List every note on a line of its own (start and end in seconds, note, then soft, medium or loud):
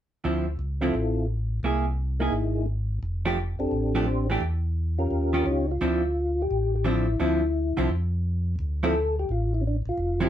0.24 0.57 D2 medium
0.24 0.45 D3 soft
0.24 0.45 F3 soft
0.24 0.45 C4 soft
0.24 0.45 E4 soft
0.59 0.92 C#2 medium
0.81 0.93 D3 soft
0.81 0.93 F3 soft
0.81 1.26 C4 soft
0.81 0.94 C4 medium
0.81 1.26 E4 soft
0.81 0.94 E4 medium
0.81 1.27 F4 soft
0.81 1.27 A4 soft
0.94 1.60 A1 medium
1.63 2.30 C2 medium
1.63 1.84 A#3 soft
1.63 1.85 E4 soft
1.63 1.85 G#4 soft
2.20 2.65 A#3 medium
2.20 2.32 A#3 soft
2.20 2.65 D#4 soft
2.20 2.66 E4 medium
2.20 2.33 E4 soft
2.20 2.66 G#4 medium
2.20 2.33 G#4 soft
2.32 2.99 G#1 medium
3.03 3.56 F1 medium
3.25 3.37 F3 medium
3.25 3.37 A3 medium
3.25 3.37 D4 medium
3.25 3.37 G4 medium
3.59 3.66 F1 soft
3.59 4.04 C4 medium
3.59 4.04 D4 medium
3.59 4.05 G4 medium
3.59 4.05 A4 medium
3.71 4.38 A1 medium
3.95 4.06 F3 medium
3.95 4.06 A3 medium
3.95 4.07 D4 medium
3.95 4.07 G4 medium
4.06 4.27 C4 medium
4.06 4.27 D4 medium
4.06 4.28 G4 soft
4.06 4.28 C5 medium
4.30 4.41 E3 medium
4.30 4.42 A3 medium
4.30 4.42 D4 medium
4.30 4.42 G4 medium
4.41 5.07 E2 medium
4.98 5.44 C#4 medium
4.98 5.44 F4 soft
4.98 5.44 G4 medium
4.98 5.44 A#4 medium
5.11 5.44 D#2 medium
5.33 5.45 D#3 soft
5.33 5.45 C#4 medium
5.33 5.45 F4 medium
5.33 5.45 G4 medium
5.45 5.79 C#2 medium
5.45 5.66 C#4 medium
5.45 5.66 F4 medium
5.45 5.67 G4 medium
5.45 5.67 C#5 medium
5.50 5.71 D#4 medium
5.71 6.42 F4 medium
5.81 6.47 D2 medium
5.81 6.01 D3 medium
5.81 6.01 F3 medium
5.81 6.02 C4 medium
5.81 6.02 E4 medium
6.42 6.75 G4 loud
6.51 7.17 A1 medium
6.76 6.87 G4 medium
6.85 7.05 D3 medium
6.85 7.06 F3 medium
6.85 7.06 C4 medium
6.85 7.06 E4 medium
6.89 7.22 E4 medium
7.20 7.73 D2 medium
7.20 7.40 D3 soft
7.20 7.40 F3 medium
7.20 7.41 C4 medium
7.20 7.41 E4 medium
7.20 7.87 E4 medium
7.77 7.89 C2 medium
7.77 7.88 D3 medium
7.77 7.89 F3 medium
7.77 7.89 C4 medium
7.77 7.89 E4 medium
7.90 8.56 F2 medium
8.59 9.25 D2 medium
8.83 8.94 D3 medium
8.83 8.94 F3 medium
8.83 8.94 C4 medium
8.83 8.94 E4 medium
8.83 9.16 A4 loud
9.19 9.31 G4 medium
9.29 9.82 A1 medium
9.29 9.53 F4 medium
9.54 9.62 E4 medium
9.61 9.64 C#4 medium
9.67 9.76 D4 medium
9.86 9.92 A1 soft
9.86 10.20 F4 medium
9.98 10.29 F1 medium
10.20 10.29 D3 medium
10.20 10.29 F3 medium
10.20 10.29 C4 medium
10.20 10.29 E4 medium
10.20 10.29 G4 medium